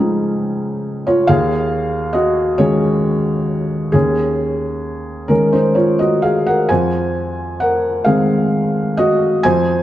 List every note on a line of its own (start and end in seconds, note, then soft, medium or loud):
0.00 1.31 C#2 medium
0.00 1.24 F3 soft
0.00 1.24 G#3 soft
0.00 1.03 C#4 medium
0.00 1.25 D#4 soft
0.00 1.06 G#4 medium
1.07 1.27 F4 medium
1.07 1.28 C#5 medium
1.27 2.55 D#2 medium
1.27 2.11 G#4 medium
1.27 2.14 F5 loud
2.13 2.56 F#4 medium
2.13 2.58 D#5 medium
2.58 3.90 D#3 medium
2.58 3.90 G#3 soft
2.58 3.90 C#4 medium
2.58 3.90 G#4 medium
2.58 3.93 C#5 medium
3.92 5.26 D#2 medium
3.92 5.26 C#4 medium
3.92 5.29 G#4 medium
5.28 6.65 D#3 soft
5.28 6.65 G#3 soft
5.28 5.51 C#4 medium
5.28 5.52 A#4 medium
5.53 5.75 D#4 medium
5.53 5.76 C5 medium
5.75 5.97 F4 medium
5.75 5.99 C#5 medium
5.99 6.22 F#4 medium
5.99 6.23 D#5 medium
6.22 6.45 G#4 medium
6.22 6.46 F5 medium
6.47 6.69 A#4 medium
6.47 6.69 F#5 medium
6.69 8.02 F2 medium
6.69 7.57 C5 medium
6.69 7.60 G#5 medium
7.60 8.03 A#4 medium
7.60 8.05 F#5 medium
8.04 9.41 D#3 soft
8.04 9.41 G#3 soft
8.04 9.42 C4 soft
8.04 8.94 G#4 medium
8.04 8.98 F5 medium
8.97 9.42 F#4 medium
8.97 9.45 D#5 medium
9.43 9.83 F2 medium
9.43 9.83 C5 medium
9.43 9.83 G#5 loud